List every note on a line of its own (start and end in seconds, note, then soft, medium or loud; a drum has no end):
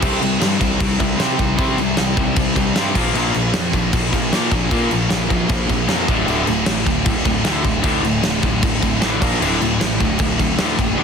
0.01 0.18 C2 loud
0.01 0.20 C3 medium
0.01 0.20 G3 medium
0.01 0.20 C4 loud
0.01 kick loud
0.01 crash loud
0.01 crash medium
0.20 0.37 C2 loud
0.20 0.39 C3 medium
0.20 0.39 G3 medium
0.20 crash medium
0.40 0.56 G2 medium
0.40 0.58 C3 medium
0.40 0.58 G3 medium
0.40 0.60 C4 loud
0.40 snare loud
0.40 crash medium
0.60 0.77 C2 medium
0.60 0.78 C3 medium
0.60 0.78 G3 medium
0.60 0.80 C4 loud
0.60 kick medium
0.60 crash medium
0.80 0.96 C2 medium
0.80 0.97 C3 medium
0.80 0.98 G3 medium
0.80 1.19 C4 loud
0.80 kick loud
0.80 crash medium
1.00 1.16 C2 medium
1.00 1.17 C3 medium
1.00 1.17 G3 medium
1.00 kick medium
1.00 crash medium
1.19 1.37 C3 medium
1.19 1.36 C3 medium
1.19 1.37 G3 loud
1.19 1.38 C4 loud
1.19 snare loud
1.19 crash medium
1.38 1.55 C2 loud
1.38 1.56 C3 medium
1.38 1.56 G3 medium
1.38 1.58 C4 medium
1.38 kick medium
1.38 crash medium
1.58 1.77 C3 medium
1.58 1.75 C3 loud
1.58 1.77 G3 loud
1.58 1.77 C4 loud
1.58 kick loud
1.58 crash medium
1.78 1.94 C2 medium
1.78 1.96 C3 medium
1.78 1.96 G3 medium
1.78 crash medium
1.97 2.14 C2 medium
1.97 2.15 C3 medium
1.97 2.16 G3 medium
1.97 2.17 C4 medium
1.97 snare loud
1.97 crash medium
2.17 2.34 C2 medium
2.17 2.35 C3 medium
2.17 2.35 G3 medium
2.17 2.37 C4 medium
2.17 kick medium
2.17 crash medium
2.36 2.53 C2 medium
2.36 2.54 C3 medium
2.36 2.54 G3 medium
2.36 2.75 C4 loud
2.36 kick loud
2.36 crash medium
2.56 2.72 C2 medium
2.56 2.74 C3 medium
2.56 2.74 G3 medium
2.56 kick medium
2.56 crash medium
2.76 2.92 G2 medium
2.76 2.94 C3 medium
2.76 2.94 G3 loud
2.76 2.95 C4 loud
2.76 snare loud
2.76 crash medium
2.95 3.11 A#1 loud
2.95 3.13 A#2 medium
2.95 3.13 F3 medium
2.95 3.14 A#3 medium
2.95 kick loud
2.95 crash loud
3.14 3.31 A#1 loud
3.14 3.32 A#2 medium
3.14 3.32 F3 medium
3.14 3.33 A#3 medium
3.14 crash medium
3.33 3.51 A#1 loud
3.33 3.52 A#2 medium
3.33 3.52 F3 medium
3.33 crash medium
3.54 3.71 F2 medium
3.54 3.72 A#2 medium
3.54 3.72 F3 loud
3.54 3.74 A#3 loud
3.54 snare loud
3.54 crash medium
3.73 3.90 A#1 medium
3.73 3.91 A#2 medium
3.73 3.92 F3 medium
3.73 3.92 A#3 loud
3.73 kick medium
3.73 crash medium
3.93 4.09 A#1 loud
3.93 4.11 A#2 medium
3.93 4.11 F3 medium
3.93 4.31 A#3 loud
3.93 kick loud
3.93 crash medium
4.12 4.29 A#1 loud
4.12 4.30 A#2 medium
4.12 4.31 F3 medium
4.12 kick medium
4.12 crash medium
4.32 4.50 A#2 medium
4.32 4.49 A#2 loud
4.32 4.51 F3 loud
4.32 4.52 A#3 loud
4.32 snare loud
4.32 crash medium
4.51 4.68 A#1 loud
4.51 4.69 A#2 medium
4.51 4.70 F3 medium
4.51 4.70 A#3 loud
4.51 kick medium
4.51 crash medium
4.71 4.90 A#2 medium
4.71 4.88 A#2 loud
4.71 4.90 F3 medium
4.71 4.90 A#3 loud
4.71 kick loud
4.71 crash medium
4.91 5.07 A#1 medium
4.91 5.08 A#2 medium
4.91 5.08 F3 medium
4.91 crash medium
5.09 5.27 A#1 medium
5.09 5.27 A#2 medium
5.09 5.28 F3 medium
5.09 5.28 A#3 medium
5.09 snare loud
5.09 crash medium
5.29 5.47 A#1 medium
5.29 5.47 A#2 medium
5.29 5.47 F3 medium
5.29 5.48 A#3 medium
5.29 kick medium
5.29 crash medium
5.49 5.66 A#1 medium
5.49 5.67 A#2 medium
5.49 5.67 F3 medium
5.49 5.86 A#3 loud
5.49 kick loud
5.49 crash medium
5.69 5.86 A#1 medium
5.69 5.86 A#2 medium
5.69 5.87 F3 medium
5.69 kick medium
5.69 crash medium
5.88 6.05 F2 medium
5.88 6.07 A#2 loud
5.88 6.07 F3 loud
5.88 6.07 A#3 loud
5.88 snare loud
5.88 crash medium
6.07 6.25 D1 medium
6.07 6.25 D2 medium
6.07 6.26 A2 medium
6.07 6.27 D3 loud
6.07 kick loud
6.07 crash medium
6.26 6.44 D1 medium
6.26 6.46 D2 medium
6.26 6.46 A2 medium
6.26 6.47 D3 medium
6.26 crash medium
6.47 6.64 D1 medium
6.47 6.65 D2 medium
6.47 6.65 A2 medium
6.47 crash medium
6.66 6.83 A1 medium
6.66 6.85 D2 medium
6.66 6.85 A2 medium
6.66 6.85 D3 loud
6.66 snare loud
6.66 crash medium
6.86 7.03 D1 medium
6.86 7.04 D2 medium
6.86 7.04 A2 medium
6.86 7.05 D3 medium
6.86 kick medium
6.86 crash medium
7.05 7.22 D1 medium
7.05 7.23 D2 medium
7.05 7.23 A2 medium
7.05 7.44 D3 loud
7.05 kick loud
7.05 crash loud
7.25 7.42 D1 medium
7.25 7.43 D2 medium
7.25 7.43 A2 medium
7.25 kick medium
7.25 crash medium
7.44 7.62 D2 loud
7.44 7.62 D2 medium
7.44 7.63 A2 loud
7.44 7.64 D3 loud
7.44 snare loud
7.44 crash medium
7.63 7.81 D1 medium
7.63 7.81 D2 medium
7.63 7.81 A2 medium
7.63 7.84 D3 loud
7.63 kick medium
7.63 crash medium
7.82 8.02 D2 loud
7.82 8.00 D2 loud
7.82 8.02 A2 medium
7.82 8.02 D3 loud
7.82 kick loud
7.82 crash medium
8.03 8.20 D1 medium
8.03 8.21 D2 medium
8.03 8.21 A2 medium
8.03 crash medium
8.22 8.40 D1 medium
8.22 8.40 D2 medium
8.22 8.41 A2 medium
8.22 8.43 D3 loud
8.22 snare loud
8.22 crash medium
8.42 8.59 D1 medium
8.42 8.60 D2 medium
8.42 8.60 A2 medium
8.42 8.62 D3 loud
8.42 kick medium
8.42 crash medium
8.62 8.79 D1 medium
8.62 8.80 D2 medium
8.62 8.80 A2 medium
8.62 9.01 D3 loud
8.62 kick loud
8.62 crash medium
8.81 8.99 D1 medium
8.81 9.00 D2 medium
8.81 9.00 A2 medium
8.81 kick medium
8.81 crash medium
9.01 9.19 A1 medium
9.01 9.20 D2 loud
9.01 9.20 A2 loud
9.01 9.21 D3 loud
9.01 snare loud
9.01 crash medium
9.21 9.38 A#1 medium
9.21 9.40 A#2 medium
9.21 9.40 F3 medium
9.21 9.41 A#3 medium
9.21 kick loud
9.21 crash loud
9.40 9.58 D1 loud
9.40 9.59 D2 medium
9.40 9.59 A2 loud
9.40 9.60 D3 loud
9.40 crash medium
9.61 9.78 D1 medium
9.61 9.78 D2 medium
9.61 9.79 A2 medium
9.61 crash medium
9.81 9.97 A1 medium
9.81 9.98 D2 medium
9.81 9.98 A2 medium
9.81 10.00 D3 loud
9.81 snare loud
9.81 crash medium
10.00 10.16 D1 medium
10.00 10.18 D2 medium
10.00 10.18 A2 medium
10.00 10.19 D3 medium
10.00 kick medium
10.00 crash medium
10.19 10.36 D1 medium
10.19 10.37 D2 medium
10.19 10.37 A2 medium
10.19 10.58 D3 loud
10.19 kick loud
10.19 crash medium
10.38 10.55 D1 medium
10.38 10.56 D2 medium
10.38 10.56 A2 medium
10.38 kick medium
10.38 crash medium
10.58 10.76 D2 medium
10.58 10.75 D2 loud
10.58 10.77 A2 loud
10.58 10.77 D3 loud
10.58 snare loud
10.58 crash medium
10.77 10.94 F#1 medium
10.77 10.95 D2 medium
10.77 10.96 A2 medium
10.77 10.96 D3 medium
10.77 kick medium
10.77 crash medium
10.96 11.04 D2 medium
10.96 11.04 A2 loud
10.96 11.04 D3 loud